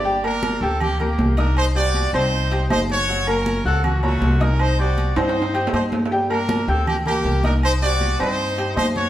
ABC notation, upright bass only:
X:1
M:4/4
L:1/8
Q:1/4=158
K:Gm
V:1 name="Upright bass" clef=bass
G,,,3 D,,3 C,,2- | C,,3 C,,3 ^F,,,2- | ^F,,,3 ^C,,3 =C,,2- | C,,3 G,,3 G,,2- |
G,,3 D,,3 C,,2- | C,,3 G,,3 ^F,,2 |]